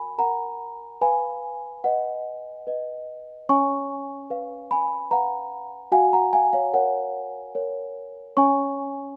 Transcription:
Already playing: F#4 A#4 F#5 G#5 A#5 B5 C#6
0.18 A#4 F#5 A#5
1.01 B4 F5 G#5 B5
1.84 B4 D#5 F#5
2.67 B4 D#5
3.49 C#4 C#5 G#5 C#6
4.30 B4 F5
4.71 G#5 B5
5.11 B4 F5 F#5 A#5
5.92 F#4 F5 F#5 G#5
6.13 F#5 A#5
6.33 F5 G#5
6.53 C#5 F5
6.74 A#4 C#5 F#5
7.55 A#4 C#5
8.37 C#4 C#5 G#5 C#6

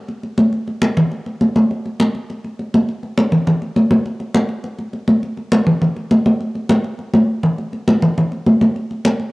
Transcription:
0.08 high conga
0.23 high conga
0.38 high conga
0.53 high conga
0.68 high conga
0.82 high conga
0.97 low conga
1.11 high conga
1.26 high conga
1.41 high conga
1.56 high conga
1.71 high conga
1.86 high conga
2.00 high conga
2.15 high conga
2.30 high conga
2.44 high conga
2.59 high conga
2.74 high conga
2.89 high conga
3.03 high conga
3.18 high conga
3.32 low conga
3.47 high conga, low conga
3.62 high conga
3.76 high conga
3.91 high conga
4.06 high conga
4.20 high conga
4.35 high conga
4.49 high conga
4.64 high conga
4.79 high conga
4.93 high conga
5.08 high conga
5.23 high conga
5.37 high conga
5.52 high conga
5.67 low conga
5.82 high conga, low conga
5.96 high conga
6.11 high conga
6.26 high conga
6.40 high conga
6.55 high conga
6.69 high conga
6.84 high conga
6.99 high conga
7.13 high conga
7.43 low conga
7.58 high conga
7.73 high conga
7.87 high conga
8.02 low conga
8.17 high conga, low conga
8.32 high conga
8.46 high conga
8.61 high conga
8.76 high conga
8.91 high conga
9.05 high conga
9.20 high conga

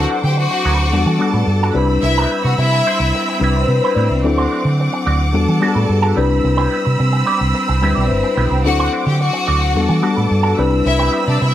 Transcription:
Already playing: F#3 C4 D4 E4 A4 C5 F#5 D6
0.09 F#3 C4 D4 A4
0.23 D3 G4 G5, muted clean electric guitar stroke
0.36 F#4 F#5, muted clean electric guitar stroke
0.51 muted clean electric guitar stroke
0.64 D2 F#3 C4 D4 B4
0.79 muted clean electric guitar stroke
0.92 E2 G3 B3 D4 F#4 A4 A5, muted clean electric guitar stroke
1.06 E3, muted clean electric guitar stroke
1.18 G3 B3 D4 F#4 A4
1.34 A2 G3 D4 F#4 B4
1.47 G2, muted clean electric guitar stroke
1.63 G3 D4 F#4 A4
1.74 C2 G3 C4 D4 E4 B4 B5 E6
1.90 muted clean electric guitar stroke
2.01 C2 E4 E5, muted clean electric guitar stroke
2.18 G3 C4 E4 B4
2.31 G3 C4 E4 B4
2.43 C3 F#4 F#5, muted clean electric guitar stroke
2.56 C3 E4 E5, muted clean electric guitar stroke
2.72 muted clean electric guitar stroke
2.86 G3 C4 E4 C5
3.00 C2, muted clean electric guitar stroke
3.15 muted clean electric guitar stroke
3.28 muted clean electric guitar stroke
3.40 C2 G3 C4 D4 E4 B4
3.44 E4 B4
3.57 G3 C4 E4 C5
3.68 C3 B4, muted clean electric guitar stroke
3.82 G3 C4 E4 B4 C5
3.95 A2 G3 C4 E4 B4 D5
4.10 C2 E5, muted clean electric guitar stroke
4.23 D2 F#3 C4 D4 E4 A4 F#5 D6, muted clean electric guitar stroke
4.38 A3 D4 F#4 C5
4.51 A3 D4 F#4 C5
4.65 D3, muted clean electric guitar stroke
4.80 muted clean electric guitar stroke
4.93 muted clean electric guitar stroke
5.06 D2 A3 D4 F#4 D5
5.20 muted clean electric guitar stroke
5.33 E2 G3 B3 D4 F#4 A4 A5, muted clean electric guitar stroke
5.48 E3, muted clean electric guitar stroke
5.60 G3 B3 D4 F#4 G#4 A4
5.68 A4
5.75 A2 G3 D4 F#4 B4
5.89 G2, muted clean electric guitar stroke
6.02 G3 D4 F#4 A4
6.16 C2 G3 B3 C4 D4 E4 G4 B4 B5 E6
6.30 muted clean electric guitar stroke
6.44 C2, muted clean electric guitar stroke
6.57 B3 E4 G4 B4
6.71 B3 E4 G4 B4
6.85 C3, muted clean electric guitar stroke
6.99 C3, muted clean electric guitar stroke
7.12 muted clean electric guitar stroke
7.26 B3 E4 G4 D5
7.41 C2, muted clean electric guitar stroke
7.54 muted clean electric guitar stroke
7.68 C2, muted clean electric guitar stroke
7.82 D2 G3 B3 C4 D4 E4 G4 B4 E5
7.95 B1 B3 E4 G4 D5
8.09 G1 C5, muted clean electric guitar stroke
8.23 muted clean electric guitar stroke
8.37 B1 B3 E4 G4 B4
8.51 C2 B3 E4 G4 B4
8.65 D2 F#3 C4 D4 E4 F#4 A4 F#5 D6, muted clean electric guitar stroke
8.79 A3 D4 F#4 C5
8.92 A3 D4 F#4 C5
9.06 D3 G4 G5
9.20 F#4 F#5, muted clean electric guitar stroke
9.33 muted clean electric guitar stroke
9.47 D2 A3 D4 F#4 D5
9.61 muted clean electric guitar stroke
9.75 E2 G3 B3 D4 F#4 A4 A5 D6, muted clean electric guitar stroke
9.89 E3, muted clean electric guitar stroke
10.02 G3 B3 D4 F#4 A4
10.17 A2 G3 D4 F#4 B4
10.30 G2, muted clean electric guitar stroke
10.43 G3 D4 F#4 A4
10.58 C2 G3 B3 C4 D4 E4 G4 B4 B5 E6
10.71 muted clean electric guitar stroke
10.86 C2 E4 E5, muted clean electric guitar stroke
10.99 B3 E4 G4 B4
11.12 B3 E4 G4 B4
11.27 C3 D4 D5, muted clean electric guitar stroke
11.40 C3 E4 E5, muted clean electric guitar stroke

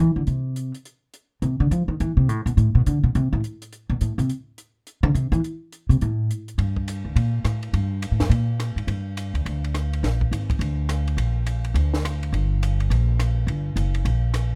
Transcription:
0.00 E3
0.16 D3
0.27 C3, closed hi-hat
0.56 closed hi-hat
0.74 closed hi-hat
0.85 closed hi-hat
1.14 closed hi-hat
1.42 C3, closed hi-hat
1.60 D3
1.71 F3, closed hi-hat
1.88 D#3
2.00 E3, closed hi-hat
2.17 C3
2.29 A2, closed hi-hat
2.46 B2, closed hi-hat
2.57 A2, closed hi-hat
2.75 B2
2.86 D3, closed hi-hat
3.04 B2
3.15 C3, closed hi-hat
3.33 A2
3.44 closed hi-hat
3.62 closed hi-hat
3.73 closed hi-hat
3.90 B2
4.01 A2, closed hi-hat
4.18 C3, closed hi-hat
4.30 closed hi-hat
4.58 closed hi-hat
4.87 closed hi-hat
5.03 D3
5.15 C3, closed hi-hat
5.32 E3, closed hi-hat
5.44 closed hi-hat
5.72 closed hi-hat
5.89 C3, closed hi-hat
6.01 A2, closed hi-hat
6.31 closed hi-hat
6.48 closed hi-hat
6.58 G2, ride
6.76 kick
6.88 hi-hat pedal, ride
7.05 D2
7.16 A#2, ride
7.44 A2, cross-stick, hi-hat pedal, ride
7.63 ride
7.73 G2, ride
8.02 hi-hat pedal, ride
8.11 A2
8.20 F2, snare, ride
8.30 A#2, ride
8.60 cross-stick, hi-hat pedal, ride
8.76 G#2, ride
8.87 G2, ride
9.17 hi-hat pedal, ride
9.34 D2, ride
9.45 D2, ride
9.64 ride
9.74 cross-stick, hi-hat pedal, ride
9.93 ride
10.03 A#1, snare, ride
10.21 kick
10.31 G#1, hi-hat pedal, ride
10.50 kick, ride
10.59 D2, ride
10.89 cross-stick, hi-hat pedal, ride
11.08 ride
11.17 A#1, ride
11.46 hi-hat pedal, ride
11.65 ride
11.74 D2, ride
11.94 snare
12.05 cross-stick, hi-hat pedal, ride
12.23 ride
12.32 G1, ride
12.63 hi-hat pedal, ride
12.80 ride
12.90 A#1, ride
13.19 cross-stick, hi-hat pedal, ride
13.47 G1, ride
13.76 F#1, hi-hat pedal, ride
13.95 ride
14.05 A#1, ride
14.34 cross-stick, hi-hat pedal, ride

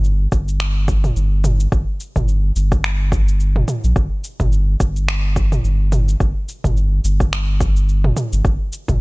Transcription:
Already playing: G1
0.04 cabasa
0.32 G1, kick, cabasa
0.48 cabasa
0.60 finger snap, cabasa
0.88 kick, cabasa
1.04 mid tom, cabasa
1.16 G1, cabasa
1.44 mid tom, cabasa
1.60 cabasa
1.72 G1, kick, cabasa
2.00 cabasa
2.16 G1, kick, mid tom, cabasa
2.28 cabasa
2.56 G1, cabasa
2.72 kick, cabasa
2.84 finger snap, cabasa
3.12 kick, cabasa
3.28 cabasa
3.40 cabasa
3.56 mid tom
3.68 mid tom, cabasa
3.84 A#1, cabasa
3.96 G1, kick, cabasa
4.24 cabasa
4.40 G1, kick, mid tom, cabasa
4.52 cabasa
4.80 G1, kick, cabasa
4.96 cabasa
5.08 finger snap, cabasa
5.36 kick, cabasa
5.52 mid tom, cabasa
5.64 G1, cabasa
5.92 mid tom, cabasa
6.09 cabasa
6.20 G1, kick, cabasa
6.49 cabasa
6.64 G1, kick, mid tom, cabasa
6.77 cabasa
7.04 G1, cabasa
7.20 kick, cabasa
7.33 finger snap, cabasa
7.61 kick, cabasa
7.76 cabasa
7.89 cabasa
8.04 mid tom
8.17 mid tom, cabasa
8.33 G1, cabasa
8.45 G1, kick, cabasa
8.73 cabasa
8.88 G1, kick, mid tom, cabasa

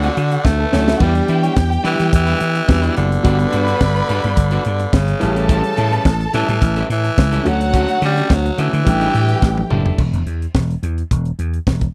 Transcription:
Already playing: D3 F#3 A3 C#4 F#4 F#5
0.03 A3 C#4 F#4 A4, closed hi-hat
0.16 D3, muted clean electric guitar stroke, closed hi-hat
0.31 muted clean electric guitar stroke, closed hi-hat
0.45 D2 A3, muted clean electric guitar stroke, kick, snare
0.59 A3 A4, muted clean electric guitar stroke
0.66 B3 B4
0.72 D2 D3 F#3 A3 C#4 E4 F#4 A4 C#5, snare
0.81 D4 D5
0.87 A3 C#4 E4 F#4 A4 E5, snare
0.95 E3 F#4 F#5
1.00 E2 G3 B3 D4 E4 G4 B4 G5, kick, crash
1.15 muted clean electric guitar stroke, closed hi-hat
1.28 E3 G3 D4 E4 B4, closed hi-hat
1.43 G3 D4 E4 C#5, closed hi-hat
1.56 E2, muted clean electric guitar stroke, kick, snare
1.70 muted clean electric guitar stroke, closed hi-hat
1.83 E3 G3 D4 E4 B4, closed hi-hat
1.99 E3, muted clean electric guitar stroke, closed hi-hat
2.13 E2 E3, muted clean electric guitar stroke, kick, closed hi-hat
2.27 G3 D4 E4 B4, closed hi-hat
2.40 E3, muted clean electric guitar stroke, closed hi-hat
2.55 muted clean electric guitar stroke, closed hi-hat
2.67 E2 E3 G3 B3 D4 F#4, muted clean electric guitar stroke, kick, snare
2.76 G4
2.82 G3 D4 E4 B4, closed hi-hat
2.96 F#1 D3 G3 D4 E4 B4, closed hi-hat
3.11 muted clean electric guitar stroke, closed hi-hat
3.23 G1 G3 B3 D4 F#4 G4 B4 B5, kick, closed hi-hat
3.39 muted clean electric guitar stroke, closed hi-hat
3.51 G2 B3 D4 F#4 B4, closed hi-hat
3.67 B3 D4 F#4 B4, closed hi-hat
3.81 G1, muted clean electric guitar stroke, kick, snare
3.96 muted clean electric guitar stroke, closed hi-hat
4.08 G2 B3 D4 F#4 B4, closed hi-hat
4.23 G2, muted clean electric guitar stroke, closed hi-hat
4.37 G1, muted clean electric guitar stroke, kick, closed hi-hat
4.51 B3 D4 F#4 B4, closed hi-hat
4.64 G2, muted clean electric guitar stroke, closed hi-hat
4.79 muted clean electric guitar stroke, closed hi-hat
4.93 G1 C#3, muted clean electric guitar stroke, kick, snare
5.07 muted clean electric guitar stroke, closed hi-hat
5.20 A1 E3 G3 A3 C#4 E4 G4 A4 A5, snare, closed hi-hat
5.35 G3 C#4 E4 A4, closed hi-hat
5.48 C#3 G3 C#4 E4 A4, kick, closed hi-hat
5.58 B2
5.64 C#3, muted clean electric guitar stroke, closed hi-hat
5.77 A2 G3 C#4 E4 A4, closed hi-hat
5.91 G3 C#4 E4 B4, closed hi-hat
6.05 A1, kick, snare
6.20 muted clean electric guitar stroke, closed hi-hat
6.33 A2 E3 G3 C#4 E4 A4, closed hi-hat
6.49 A2, muted clean electric guitar stroke, closed hi-hat
6.62 A1, muted clean electric guitar stroke, kick, closed hi-hat
6.76 G3 C#4 E4 A4, closed hi-hat
6.89 A2 E3, muted clean electric guitar stroke, closed hi-hat
7.04 muted clean electric guitar stroke, closed hi-hat
7.17 C#2, muted clean electric guitar stroke, kick, snare
7.32 G3 C#4 E4 A4, closed hi-hat
7.43 D2 D3 F#3 A3 C#4 F#4 A4 F#5, closed hi-hat
7.48 F#3
7.61 muted clean electric guitar stroke, closed hi-hat
7.74 A3 C#4 F#4 A4, kick, closed hi-hat
7.88 muted clean electric guitar stroke, closed hi-hat
8.02 D3 G3 A3 C#4 F#4 A4, closed hi-hat
8.17 A3 C#4 F#4 A4, closed hi-hat
8.29 D2, muted clean electric guitar stroke, kick, snare
8.34 F#3
8.45 muted clean electric guitar stroke, closed hi-hat
8.58 D3 E3 A3 C#4 F#4 A4, closed hi-hat
8.73 D3, muted clean electric guitar stroke, closed hi-hat
8.85 A1 E3 G3 A3 D4 G4 G5, muted clean electric guitar stroke, kick, closed hi-hat
9.00 G3 D4 E4 A4, closed hi-hat
9.14 A2, muted clean electric guitar stroke, closed hi-hat
9.29 muted clean electric guitar stroke, closed hi-hat
9.41 A1, muted clean electric guitar stroke, kick, snare
9.57 muted clean electric guitar stroke, high tom
9.70 F#1 G3 D4 E4 A4, mid tom
9.84 G3 D4 E4 A4, floor tom
9.98 E1, kick, crash
10.13 E1, closed hi-hat
10.26 E2, closed hi-hat
10.42 closed hi-hat
10.55 E1, kick, snare
10.70 closed hi-hat
10.83 E2, closed hi-hat
10.98 closed hi-hat
11.11 E1, kick, closed hi-hat
11.25 closed hi-hat
11.39 E2, closed hi-hat
11.54 closed hi-hat
11.67 E1, kick, snare
11.81 kick, closed hi-hat

